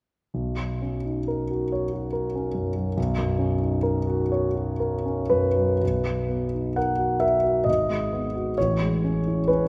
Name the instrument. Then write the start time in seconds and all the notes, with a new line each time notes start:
grand piano
0.34 B1
0.57 F#3
0.82 C#4
1.05 D#4
1.28 A#4
1.51 F#4
1.72 C#5
1.93 F#4
2.13 A#4
2.35 C#4
2.55 F#2
2.76 F#3
2.97 B1
3.18 F#2
3.39 C#4
3.61 D#4
3.83 A#4
4.07 F#4
4.32 C#5
4.55 F#4
4.80 A#4
5.05 C#4
5.30 F#2 B4
5.56 F#3
5.83 B1
6.06 F#3
6.29 B3
6.54 D#4
6.76 A#4 F#5
6.98 F#4
7.20 A#4 E5
7.44 F#4
7.64 G#1 D#5
7.90 G#3
8.12 B3
8.35 F#4
8.58 A1 C#5
8.81 G#3
9.04 C#4
9.27 E4
9.48 C#4 B4